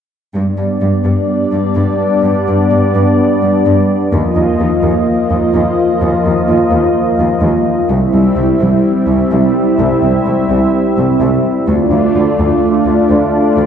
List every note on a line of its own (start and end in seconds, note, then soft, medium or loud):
0.34 0.43 G2 soft
0.34 4.08 G3 soft
0.34 4.08 B3 soft
0.34 4.08 D4 soft
0.34 4.08 D5 soft
0.58 0.66 G2 soft
0.81 0.89 G2 soft
1.04 1.12 G2 soft
1.52 1.60 G2 soft
1.76 1.84 G2 soft
2.22 2.30 G2 soft
2.47 2.55 G2 soft
2.71 2.79 G2 soft
2.94 3.02 G2 soft
3.42 3.50 G2 soft
3.66 3.74 G2 soft
4.11 4.20 D#2 soft
4.11 7.90 F3 soft
4.11 7.90 A#3 medium
4.11 7.90 F4 medium
4.11 7.90 D#5 medium
4.36 4.44 D#2 soft
4.60 4.68 D#2 soft
4.83 4.91 D#2 soft
5.31 5.39 D#2 soft
5.54 5.62 D#2 soft
6.02 6.10 D#2 soft
6.25 6.33 D#2 soft
6.48 6.56 D#2 soft
6.71 6.79 D#2 soft
7.19 7.27 D#2 soft
7.42 7.50 D#2 soft
7.89 7.97 C2 soft
7.89 11.68 G3 medium
7.89 11.68 C4 medium
7.89 11.68 E4 medium
7.89 11.68 E5 soft
8.13 8.21 C2 soft
8.36 8.44 C2 soft
8.60 8.68 C2 soft
9.07 9.15 C2 soft
9.31 9.39 C2 soft
9.79 9.87 C2 medium
10.03 10.11 C2 soft
10.26 10.34 C2 soft
10.50 10.58 C2 soft
10.97 11.05 C2 soft
11.20 11.28 C2 soft
11.67 11.76 D2 soft
11.67 13.66 A3 medium
11.67 13.66 D4 medium
11.67 13.66 F4 medium
11.67 13.66 D5 medium
11.91 11.99 D2 soft
12.15 12.23 D2 soft
12.39 12.47 D2 soft
12.86 12.94 D2 soft
13.10 13.18 D2 soft
13.57 13.65 D2 soft